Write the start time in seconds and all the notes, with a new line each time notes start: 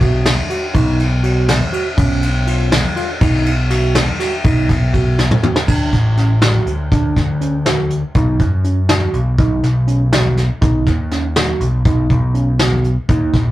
Already playing: B1
0.01 F#4, kick, ride
0.26 snare, ride
0.50 F#4, ride
0.74 B1 D#4, kick, ride
0.99 ride
1.23 F#4, ride
1.49 snare, ride
1.73 F#4, ride
1.97 B1 C#4, kick, ride
2.22 ride
2.47 F4, ride
2.72 snare, ride
2.96 F4, ride
3.21 B1 D#4, kick, ride
3.46 ride
3.70 F#4, snare, ride
3.95 snare, ride
4.20 F#4, snare, ride
4.44 B1 D#4, kick, ride
4.69 kick, snare, ride
4.93 F#4, kick, ride
5.19 snare
5.31 mid tom
5.43 F#4, mid tom
5.56 snare
5.68 D2 D4, kick, crash
5.93 A1, kick, snare, closed hi-hat
6.17 C#4, snare, closed hi-hat
6.42 F#4, snare, closed hi-hat
6.66 D2, closed hi-hat
6.92 D2 D4, kick, closed hi-hat
7.16 D2, kick, snare, closed hi-hat
7.41 C#4, closed hi-hat
7.66 F#4, snare, closed hi-hat
7.90 closed hi-hat
8.15 B1 D#4, kick, closed hi-hat
8.40 F#2, kick, closed hi-hat
8.64 C#4, closed hi-hat
8.89 F#4, snare, closed hi-hat
9.14 B1, closed hi-hat
9.38 B1 D#4, kick, closed hi-hat
9.63 B1, snare, closed hi-hat
9.87 C#4, closed hi-hat
10.12 F#4, snare, closed hi-hat
10.37 snare, closed hi-hat
10.62 B1 D#4, kick, closed hi-hat
10.87 D#2, kick, snare, closed hi-hat
11.11 C#4, snare, closed hi-hat
11.36 F#4, snare, closed hi-hat
11.60 B1, closed hi-hat
11.85 B1 D#4, kick, closed hi-hat
12.10 B1, kick, closed hi-hat
12.34 C#4, closed hi-hat
12.59 F#4, snare, closed hi-hat
12.84 closed hi-hat
13.09 D#2 D#4, kick, closed hi-hat
13.34 A#1, kick, snare, closed hi-hat